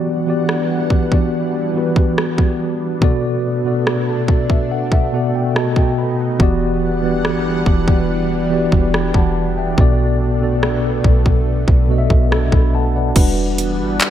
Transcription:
Already playing: E3 G3 B3 D4 F#4 G4 D5 F#5
0.26 E3 B3 F#4 G4 D5
0.49 cross-stick
0.90 kick
1.11 E3 B3 F#4 G4 D5, kick
1.74 E3 B3 F#4 G4 B4
1.96 kick
2.18 cross-stick
2.38 kick
3.01 B2 A3 B3 D4 F#4 A4 D5, kick
3.64 B2 B3 F#4 A4 D5
3.87 cross-stick
4.28 D5, kick
4.50 E5, kick
4.71 F#5
4.92 E5, kick
5.12 B2 B3 F#4 A4 D5 F#5
5.35 G5
5.54 B2 B3 D#4 F#4 A4 D#5 A5, cross-stick
5.76 G5, kick
5.98 B5
6.39 E1 E3 G3 B3 D4 F#4 G4 D5 F#5, kick
7.02 E3 B3 F#4 G4 D5
7.25 G1, cross-stick
7.66 E1, kick
7.87 E3 B3 F#4 G4 D5, kick
8.50 E3 B3 F#4 G4 D5
8.72 E1, kick
8.94 G5 B5, cross-stick
9.14 E1 F#5 A5, kick
9.57 E5 G5
9.77 B1 B2 A3 B3 F#4 A4 D5, kick
10.40 B2 B3 F#4 A4 D5
10.63 cross-stick
11.04 B1, kick
11.26 kick
11.68 B1, kick
11.88 B2 B3 F#4 A4 D#5
11.98 E5
12.10 B1, kick
12.31 D4 A4, cross-stick
12.52 B1 B5, kick
12.75 F#5 A5
12.96 D5 F#5
13.15 E1 E3 G3 B3 D4 F#4 B4 F#5, kick, closed hi-hat, crash
13.58 closed hi-hat
13.80 G1
14.00 G4 D5, clap, closed hi-hat

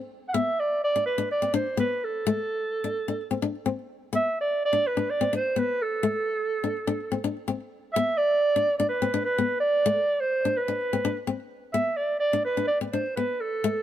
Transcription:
0.29 F#5
0.34 B3 E5
0.59 D5
0.84 D5
0.96 D4
1.06 B4
1.18 D4
1.31 D5
1.42 C4
1.54 D4 C5
1.77 B3 B4
2.04 A4
2.27 A3
2.84 D4
3.08 D4
3.31 C4
3.42 D4
3.66 C4
4.13 B3 E5
4.41 D5
4.65 D5
4.73 D4
4.87 B4
4.97 D4
5.10 D5
5.21 C4
5.33 D4 C5
5.56 B3 B4
5.82 A4
6.03 A3
6.64 D4
6.87 D4
7.12 C4
7.24 D4
7.48 C4
7.93 B3 E5
8.17 D5
8.56 D4
8.78 D4 D5
8.89 B4
9.02 C4
9.14 D4
9.25 B4
9.38 B3
9.60 D5
9.86 A3
10.20 C5
10.45 D4
10.57 B4
10.68 D4
10.93 C4
11.05 D4
11.27 C4
11.74 B3 E5
11.96 D5
12.20 D5
12.33 D4
12.45 B4
12.57 D4
12.67 D5
12.81 C4
12.92 D4 C5
13.16 B3 B4
13.40 A4
13.64 A3

